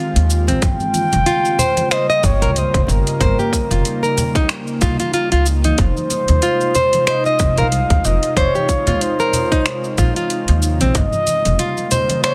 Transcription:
Already playing: D#3 G#3 C4 F4
0.16 D#2, closed hi-hat, cabasa
0.30 cabasa
0.47 A#1 C4, closed hi-hat, high conga, cabasa
0.62 G1 C#3 G3 A#3 G5, kick, closed hi-hat, cabasa
0.80 high conga, cabasa
0.94 closed hi-hat, high conga, cabasa
1.12 F1, closed hi-hat, muted conga, low conga, cabasa
1.26 F4, closed hi-hat, cabasa
1.45 muted conga, cabasa
1.59 C5, closed hi-hat, low conga, cabasa
1.77 closed hi-hat, muted conga, high conga, cabasa
1.91 C5 D#5, finger snap, closed hi-hat, cabasa
2.10 D#5, cabasa
2.23 G1 C#5, kick, cabasa
2.42 C#2 A#4, closed hi-hat, cabasa
2.56 C5, closed hi-hat, cabasa
2.74 F1, kick, closed hi-hat, cabasa
2.83 C5, low conga
2.88 G1 A#4, cabasa
3.07 closed hi-hat, cabasa
3.20 G1 D#4 C5, kick, closed hi-hat, cabasa
3.38 G4, muted conga, high conga, cabasa
3.53 kick, closed hi-hat, cabasa
3.71 F1 F4, closed hi-hat, muted conga, low conga, cabasa
3.85 closed hi-hat, cabasa
4.03 A#4, muted conga, cabasa
4.18 closed hi-hat, low conga, cabasa
4.35 D#4, kick, closed hi-hat, muted conga, cabasa
4.49 finger snap, closed hi-hat, cabasa
4.67 cabasa
4.81 C2 F4, kick, closed hi-hat, cabasa
5.00 F4, closed hi-hat, high conga, cabasa
5.14 F4, closed hi-hat, cabasa
5.32 C#2 F4, closed hi-hat, cabasa
5.46 cabasa
5.64 D#4, closed hi-hat, high conga, cabasa
5.78 F1 C3 G#3 F4 C5, kick, closed hi-hat, cabasa
5.97 high conga, cabasa
6.10 closed hi-hat, high conga, cabasa
6.28 D#2, closed hi-hat, muted conga, low conga, cabasa
6.42 F4, closed hi-hat, cabasa
6.61 muted conga, cabasa
6.75 C5, closed hi-hat, low conga, cabasa
6.93 closed hi-hat, muted conga, high conga, cabasa
7.07 C5 D#5, finger snap, closed hi-hat, cabasa
7.26 D#5, cabasa
7.39 F1, kick, cabasa
7.58 C2 A#4 F5, closed hi-hat, cabasa
7.72 closed hi-hat, cabasa
7.90 D#2, kick, closed hi-hat, cabasa
8.04 F1 D#5, low conga, cabasa
8.23 closed hi-hat, cabasa
8.36 F1 C5 C#5, kick, closed hi-hat, cabasa
8.55 G4, muted conga, high conga, cabasa
8.69 kick, closed hi-hat, cabasa
8.87 D#2 F4, closed hi-hat, muted conga, low conga, cabasa
9.01 C5, closed hi-hat, cabasa
9.19 A#4, muted conga, cabasa
9.33 closed hi-hat, low conga, cabasa
9.52 D#4, kick, closed hi-hat, muted conga, cabasa
9.66 finger snap, closed hi-hat, cabasa
9.84 cabasa
9.98 A#1 F4, kick, cabasa
10.16 F4, closed hi-hat, high conga, cabasa
10.30 closed hi-hat, cabasa
10.48 D#2, closed hi-hat, cabasa
10.62 cabasa
10.80 A#1 C4, closed hi-hat, high conga, cabasa
10.95 G1 C#3 G3 A#3 F4 D#5, kick, closed hi-hat, cabasa
11.13 high conga, cabasa
11.27 closed hi-hat, high conga, cabasa
11.45 F1, closed hi-hat, muted conga, low conga, cabasa
11.59 F4, closed hi-hat, cabasa
11.77 muted conga, cabasa
11.91 C5, closed hi-hat, low conga, cabasa
12.09 closed hi-hat, muted conga, high conga, cabasa
12.24 C5 C#5, finger snap, closed hi-hat, cabasa

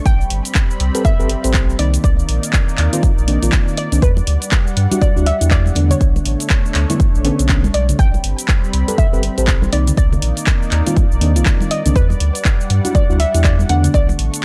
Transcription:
0.06 A1 G3 C4 G5 B5, kick, closed hi-hat, cabasa
0.21 cabasa
0.30 G1, open hi-hat
0.45 closed hi-hat, cabasa
0.55 kick, clap, closed hi-hat, cabasa
0.71 cabasa
0.80 C2, open hi-hat
0.95 C4 G4 A4 B4, closed hi-hat, cabasa
1.05 E5, kick, closed hi-hat, cabasa
1.19 G1 C4 G4 A4 B4, cabasa
1.30 open hi-hat
1.44 A1 C4 G4 A4 C5, closed hi-hat, cabasa
1.54 kick, clap, closed hi-hat, cabasa
1.70 cabasa
1.79 C2 D#3 A#3 C4 D#4 D5, open hi-hat
1.94 closed hi-hat, cabasa
2.04 C2 D5, kick, closed hi-hat, cabasa
2.19 cabasa
2.29 A#1, open hi-hat
2.43 closed hi-hat, cabasa
2.53 kick, clap, closed hi-hat, cabasa
2.69 cabasa
2.78 D#2, clap, open hi-hat
2.93 D#3 A#3 C4 F4, closed hi-hat, cabasa
3.03 kick, closed hi-hat, cabasa
3.18 A#1, cabasa
3.28 A#1 D#3 A#3 C4 D4, open hi-hat
3.43 A#1 D#3 A#3 C4 F4, closed hi-hat, cabasa
3.52 kick, clap, closed hi-hat, cabasa
3.68 cabasa
3.77 D5, open hi-hat
3.92 C2 D#3 A#3 C4 D4, closed hi-hat, cabasa
4.02 E2 G3 B4 F#5, kick, closed hi-hat, cabasa
4.17 muted conga, cabasa
4.27 D2, open hi-hat
4.42 closed hi-hat, cabasa
4.52 kick, clap, closed hi-hat, cabasa
4.67 cabasa
4.77 G2, open hi-hat
4.91 G3 D4 E4 F#4, closed hi-hat, high conga, cabasa
5.01 D5, kick, closed hi-hat, cabasa
5.16 D2 G3 D4 E4 F#4, cabasa
5.26 E5, open hi-hat
5.41 E2 G3 D4 E4 G4, closed hi-hat, cabasa
5.51 D5, kick, clap, closed hi-hat, cabasa
5.66 high conga, cabasa
5.75 E2 D3 A3 B3 D4, open hi-hat, muted conga
5.90 C#5, closed hi-hat, low conga, cabasa
6.01 B1 A3 D4 C#5, kick, closed hi-hat, cabasa
6.16 muted conga, cabasa
6.25 A1, open hi-hat
6.40 closed hi-hat, cabasa
6.50 kick, clap, closed hi-hat, cabasa
6.66 cabasa
6.75 D2, clap, open hi-hat
6.90 D3 A3 B3 E4, closed hi-hat, high conga, cabasa
7.00 kick, closed hi-hat, muted conga, cabasa
7.15 A1, cabasa
7.25 D3 A3 B3 C#4, open hi-hat
7.39 B1, closed hi-hat, cabasa
7.49 D3 A3 B3 C#4, kick, clap, closed hi-hat, cabasa
7.64 muted conga, high conga, cabasa
7.74 B1 D5, open hi-hat
7.89 closed hi-hat, low conga, cabasa
7.99 A1 G3 C4 G5 B5, kick, closed hi-hat, cabasa
8.14 muted conga, cabasa
8.24 G1, open hi-hat
8.39 closed hi-hat, cabasa
8.48 kick, clap, closed hi-hat, cabasa
8.64 cabasa
8.73 C2, open hi-hat
8.88 C4 G4 A4 B4, closed hi-hat, high conga, cabasa
8.98 E5, kick, closed hi-hat, cabasa
9.13 G1 C4 G4 A4 B4, cabasa
9.23 open hi-hat
9.38 A1 C4 G4 A4 C5, closed hi-hat, cabasa
9.47 kick, clap, closed hi-hat, cabasa
9.62 high conga, cabasa
9.72 C2 D#3 A#3 C4 D#4 D5, open hi-hat, muted conga
9.87 closed hi-hat, low conga, cabasa
9.97 C2 D5, kick, closed hi-hat, cabasa
10.12 muted conga, low conga, cabasa
10.22 A#1, open hi-hat
10.37 closed hi-hat, cabasa
10.47 kick, clap, closed hi-hat, cabasa
10.62 cabasa
10.71 D#2, clap, open hi-hat
10.86 D#3 A#3 C4 F4, closed hi-hat, high conga, cabasa
10.96 kick, closed hi-hat, muted conga, cabasa
11.11 A#1, cabasa
11.21 D#2 D#3 A#3 C4 D4, open hi-hat
11.36 A#1 D#3 A#3 C4 F4, closed hi-hat, cabasa
11.46 kick, clap, closed hi-hat, cabasa
11.61 muted conga, high conga, cabasa
11.71 D#5, open hi-hat
11.86 C2 D#3 A#3 C4 D4, closed hi-hat, low conga, cabasa
11.96 E2 G3 B4 F#5, kick, closed hi-hat, cabasa
12.10 muted conga, cabasa
12.20 D2, open hi-hat
12.35 closed hi-hat, cabasa
12.45 kick, clap, closed hi-hat, cabasa
12.61 cabasa
12.70 G2, open hi-hat
12.85 G3 D4 E4 F#4, closed hi-hat, high conga, cabasa
12.95 D5, kick, closed hi-hat, cabasa
13.10 D2 G3 D4 E4 F#4, cabasa
13.20 E5, open hi-hat
13.34 E2 G3 D4 E4 G4, closed hi-hat, cabasa
13.44 D5, kick, clap, closed hi-hat, cabasa
13.59 high conga, cabasa
13.69 E2 D3 A3 B3 D4 F#5, open hi-hat, muted conga
13.84 closed hi-hat, low conga, cabasa
13.94 B1 A3 D4 D5 C#6, kick, closed hi-hat, cabasa
14.09 muted conga, cabasa
14.19 A1, open hi-hat
14.34 closed hi-hat, cabasa

